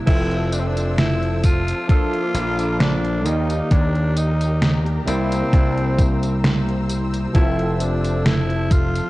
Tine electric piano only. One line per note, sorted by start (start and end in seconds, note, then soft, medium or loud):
0.06 1.80 F3 medium
0.06 1.80 C4 medium
0.06 1.82 A4 medium
0.06 1.81 E5 medium
1.88 3.16 F3 medium
1.88 3.17 A#3 medium
1.88 3.17 D4 medium
1.88 3.18 A4 medium
3.24 4.98 D#3 medium
3.24 4.99 A#3 medium
3.24 5.00 G4 medium
3.24 4.99 D5 medium
5.06 7.25 C3 loud
5.06 7.26 G3 medium
5.06 7.27 A#3 medium
5.06 7.27 E4 loud
7.33 9.07 F3 medium
7.33 9.08 C4 medium
7.33 9.09 A4 loud
7.33 9.08 E5 medium